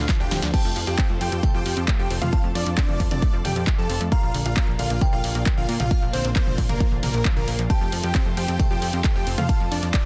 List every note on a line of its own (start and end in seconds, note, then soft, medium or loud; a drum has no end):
0.00 0.50 D3 medium
0.00 0.50 A3 medium
0.00 0.52 D4 medium
0.00 4.08 F4 medium
0.09 0.17 F3 loud
0.09 kick loud
0.09 snare medium
0.09 clap loud
0.09 closed hi-hat medium
0.20 0.29 D2 medium
0.20 0.29 D4 loud
0.20 0.42 G4 medium
0.20 0.42 G5 medium
0.20 0.42 G5 loud
0.31 0.40 D1 loud
0.31 0.40 F3 loud
0.31 snare loud
0.31 open hi-hat medium
0.42 0.52 D2 medium
0.42 0.51 F3 loud
0.42 snare medium
0.42 closed hi-hat medium
0.54 4.08 F3 medium
0.54 0.59 C4 medium
0.54 0.76 G4 medium
0.54 4.08 A4 medium
0.54 2.31 C5 medium
0.54 0.75 G5 loud
0.54 0.76 G5 loud
0.54 1.34 A5 loud
0.54 kick loud
0.54 closed hi-hat medium
0.54 crash medium
0.65 0.74 F2 medium
0.65 0.71 A3 medium
0.76 0.85 F2 loud
0.76 0.82 F3 medium
0.76 open hi-hat loud
0.87 0.96 F2 medium
0.87 1.09 G4 medium
0.87 1.09 G5 medium
0.87 1.09 G5 loud
0.87 closed hi-hat medium
0.98 1.04 C4 loud
0.98 kick loud
0.98 clap loud
0.98 closed hi-hat medium
1.10 1.19 F2 medium
1.10 1.13 A3 medium
1.21 1.30 F2 loud
1.21 1.29 F3 medium
1.21 1.43 G4 medium
1.21 1.43 G5 loud
1.21 1.43 G5 medium
1.21 open hi-hat medium
1.32 1.41 F2 medium
1.32 1.41 C4 medium
1.32 closed hi-hat medium
1.43 1.49 A3 medium
1.43 2.24 G5 medium
1.43 kick loud
1.43 closed hi-hat medium
1.43 mid tom medium
1.54 1.63 F2 medium
1.54 1.60 F3 medium
1.54 1.83 G4 medium
1.54 1.83 G5 medium
1.54 1.83 G5 loud
1.66 1.75 F2 loud
1.66 open hi-hat loud
1.77 1.86 F2 medium
1.77 1.80 C4 medium
1.77 closed hi-hat medium
1.88 1.97 A3 medium
1.88 kick loud
1.88 clap loud
1.88 closed hi-hat medium
1.99 2.08 F2 medium
1.99 2.03 F3 medium
1.99 2.14 G4 medium
1.99 2.14 G5 medium
2.10 2.19 F1 loud
2.10 2.14 C4 medium
2.10 open hi-hat medium
2.21 2.31 F2 medium
2.21 2.30 A3 medium
2.21 2.43 F4 medium
2.21 2.43 F5 loud
2.21 2.43 F5 medium
2.21 closed hi-hat medium
2.21 mid tom medium
2.33 2.39 C4 medium
2.33 4.10 D5 medium
2.33 4.03 A5 medium
2.33 kick loud
2.33 closed hi-hat medium
2.44 2.53 F2 medium
2.44 2.50 A3 medium
2.55 2.64 F2 loud
2.55 2.61 F3 medium
2.55 2.70 D4 medium
2.55 2.70 D5 medium
2.55 open hi-hat loud
2.66 2.75 F2 medium
2.66 closed hi-hat medium
2.78 2.83 C4 loud
2.78 2.99 D4 medium
2.78 2.99 D5 medium
2.78 kick loud
2.78 clap loud
2.78 closed hi-hat medium
2.89 2.98 F2 medium
2.89 2.92 A3 medium
2.89 mid tom medium
3.00 3.09 F2 loud
3.00 3.09 F3 medium
3.00 kick medium
3.00 open hi-hat loud
3.11 3.20 F2 medium
3.11 3.20 C4 medium
3.11 3.33 D4 medium
3.11 3.33 D5 loud
3.11 closed hi-hat medium
3.11 mid tom medium
3.22 3.28 A3 medium
3.22 kick loud
3.22 closed hi-hat medium
3.33 3.43 F2 medium
3.33 3.39 F3 medium
3.45 3.54 F2 loud
3.45 3.67 G4 medium
3.45 3.66 G5 loud
3.45 3.67 G5 loud
3.45 open hi-hat loud
3.45 mid tom medium
3.56 3.65 F2 medium
3.56 3.59 C4 medium
3.56 closed hi-hat medium
3.67 3.76 A3 medium
3.67 kick loud
3.67 clap loud
3.67 closed hi-hat medium
3.78 3.87 F2 medium
3.78 3.82 F3 medium
3.78 4.00 A4 medium
3.78 4.00 A5 loud
3.89 3.99 F1 loud
3.89 3.93 C4 medium
3.89 open hi-hat loud
4.00 4.10 F2 medium
4.00 4.09 A3 medium
4.00 closed hi-hat medium
4.12 4.18 A#3 medium
4.12 7.67 A#3 medium
4.12 7.67 D4 medium
4.12 10.05 F4 medium
4.12 4.34 F4 medium
4.12 4.34 F5 loud
4.12 4.93 A#5 loud
4.12 kick loud
4.12 closed hi-hat medium
4.23 4.32 A#1 medium
4.23 4.29 F3 medium
4.34 4.43 A#1 loud
4.34 4.40 D3 medium
4.34 open hi-hat loud
4.45 4.55 A#1 medium
4.45 4.67 F4 medium
4.45 4.67 F5 medium
4.45 4.67 F5 loud
4.45 closed hi-hat medium
4.57 4.62 A#3 loud
4.57 kick loud
4.57 clap loud
4.57 closed hi-hat medium
4.68 4.77 A#1 medium
4.68 4.71 F3 medium
4.79 4.88 A#1 loud
4.79 4.88 D3 medium
4.79 5.01 F4 medium
4.79 5.01 F5 medium
4.79 5.01 F5 loud
4.79 open hi-hat loud
4.90 4.99 A#1 medium
4.90 4.99 A#3 medium
4.90 closed hi-hat medium
5.01 5.07 F3 medium
5.01 5.82 G5 loud
5.01 kick loud
5.01 closed hi-hat medium
5.01 mid tom medium
5.13 5.22 A#1 medium
5.13 5.18 D3 medium
5.13 5.42 F4 medium
5.13 5.42 F5 loud
5.24 5.33 A#1 loud
5.24 open hi-hat loud
5.35 5.44 A#1 medium
5.35 5.38 A#3 medium
5.35 closed hi-hat medium
5.46 5.55 F3 medium
5.46 kick loud
5.46 clap loud
5.46 closed hi-hat medium
5.57 5.66 A#1 medium
5.57 5.61 D3 medium
5.57 5.72 F4 medium
5.57 5.72 F5 medium
5.69 5.78 A#2 loud
5.69 5.72 A#3 medium
5.69 open hi-hat loud
5.80 5.89 A#1 medium
5.80 5.88 F3 medium
5.80 6.02 F4 medium
5.80 6.02 F5 loud
5.80 closed hi-hat medium
5.80 mid tom medium
5.91 5.97 A#3 medium
5.91 7.61 F5 medium
5.91 kick loud
5.91 closed hi-hat medium
6.02 6.11 A#1 medium
6.02 6.08 F3 medium
6.13 6.22 A#1 loud
6.13 6.19 D3 medium
6.13 6.28 C4 medium
6.13 6.28 C5 medium
6.13 open hi-hat loud
6.24 6.34 A#1 medium
6.24 closed hi-hat medium
6.36 6.41 A#3 loud
6.36 6.58 C4 medium
6.36 6.58 C5 loud
6.36 kick loud
6.36 clap loud
6.36 closed hi-hat medium
6.47 6.56 A#1 medium
6.47 6.50 F3 medium
6.47 mid tom medium
6.58 6.67 A#1 loud
6.58 6.67 D3 medium
6.58 kick medium
6.58 open hi-hat loud
6.69 6.78 A#1 medium
6.69 6.91 A#3 medium
6.69 6.78 A#3 medium
6.69 6.91 A#4 medium
6.69 6.91 A#4 loud
6.69 closed hi-hat medium
6.69 mid tom medium
6.80 6.86 F3 medium
6.80 kick loud
6.80 closed hi-hat medium
6.92 7.01 A#1 medium
6.92 6.98 D3 medium
7.03 7.12 A#1 loud
7.03 7.25 A#3 medium
7.03 7.25 A#4 loud
7.03 7.25 A#4 medium
7.03 open hi-hat loud
7.03 mid tom medium
7.14 7.23 A#1 medium
7.14 7.18 A#3 medium
7.14 closed hi-hat medium
7.25 7.34 F3 medium
7.25 kick loud
7.25 clap loud
7.25 closed hi-hat medium
7.36 7.45 A#1 medium
7.36 7.40 D3 medium
7.36 7.58 A#3 medium
7.36 7.58 A#4 loud
7.36 7.58 A#4 medium
7.47 7.57 A#1 loud
7.47 7.51 A#3 medium
7.47 open hi-hat loud
7.59 7.68 A#1 medium
7.59 7.68 F3 medium
7.59 closed hi-hat medium
7.70 10.05 F3 medium
7.70 7.76 C4 medium
7.70 7.92 G4 medium
7.70 10.05 A4 medium
7.70 9.47 C5 medium
7.70 7.92 G5 loud
7.70 8.51 A5 loud
7.70 kick loud
7.70 closed hi-hat medium
7.70 ride medium
7.81 7.90 F2 medium
7.81 7.87 A3 medium
7.92 8.01 F2 loud
7.92 7.98 F3 medium
7.92 open hi-hat loud
8.03 8.13 F2 medium
8.03 8.25 G4 medium
8.03 8.25 G5 loud
8.03 8.25 G5 medium
8.03 closed hi-hat medium
8.15 8.21 C4 loud
8.15 kick loud
8.15 clap loud
8.15 closed hi-hat medium
8.15 ride medium
8.26 8.35 F2 medium
8.26 8.29 A3 medium
8.37 8.46 F2 loud
8.37 8.46 F3 medium
8.37 8.59 G4 medium
8.37 8.59 G5 medium
8.37 8.59 G5 loud
8.37 open hi-hat medium
8.48 8.57 F2 medium
8.48 8.57 C4 medium
8.48 closed hi-hat medium
8.60 8.65 A3 medium
8.60 9.40 G5 medium
8.60 kick loud
8.60 closed hi-hat medium
8.60 mid tom medium
8.60 ride medium
8.71 8.80 F2 medium
8.71 8.77 F3 medium
8.71 9.00 G4 medium
8.71 9.00 G5 medium
8.71 9.00 G5 loud
8.82 8.91 F2 loud
8.82 open hi-hat loud
8.93 9.02 F2 medium
8.93 8.97 C4 medium
8.93 closed hi-hat medium
9.04 9.13 A3 medium
9.04 kick loud
9.04 clap loud
9.04 closed hi-hat medium
9.04 ride medium
9.15 9.25 F2 medium
9.15 9.19 F3 medium
9.15 9.30 G4 medium
9.15 9.30 G5 medium
9.27 9.36 F1 loud
9.27 9.30 C4 medium
9.27 open hi-hat medium
9.38 9.47 F2 medium
9.38 9.47 A3 medium
9.38 9.60 F4 medium
9.38 9.60 F5 loud
9.38 closed hi-hat medium
9.38 mid tom medium
9.49 10.05 D5 medium
9.49 10.05 A5 medium
9.49 kick loud
9.49 closed hi-hat medium
9.49 ride medium
9.60 9.69 F2 medium
9.71 9.81 F2 loud
9.71 9.86 D4 medium
9.71 9.86 D5 medium
9.71 open hi-hat loud
9.83 9.92 F2 medium
9.83 closed hi-hat medium
9.94 10.05 D4 medium
9.94 10.05 D5 loud
9.94 kick loud
9.94 clap loud
9.94 closed hi-hat medium
9.94 ride medium